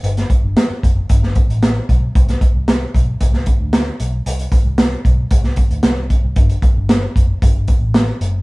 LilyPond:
<<
  \new Staff \with { instrumentName = "Fingered electric bass" } { \clef bass \time 4/4 \key g \major \tempo 4 = 114 g,,8 r16 g,,16 r8 fis,,8 g,,8. a,,8. b,,8 | c,8 r16 c,8. b,,8 c,8. d,8. b,,8 | c,8 r16 c,8. b,,8 c,8. d,16 c,8. c,16 | g,,8 r16 g,,8. fis,,8 g,,8. a,,8. fis,,8 | }
  \new DrumStaff \with { instrumentName = "Drums" } \drummode { \time 4/4 hh16 <hh sn>16 <hh bd>8 <hh sn>8 <hh bd>8 <hh bd>16 sn16 <hh bd>16 hh16 <hh sn>8 <hh bd>8 | <hh bd>16 <hh sn>16 <hh bd>8 <hh sn>8 <hh bd>8 <hh bd>16 sn16 <hh bd>8 <hh sn>8 hh8 | hh16 hh16 <hh bd>8 <hh sn>8 <hh bd>8 <hh bd>16 sn16 <hh bd>16 hh16 <hh sn>8 <hh bd>8 | <hh bd>16 hh16 <hh bd>8 <hh sn>8 <hh bd>8 <hh bd>8 <hh bd>8 <hh sn>8 hh8 | }
>>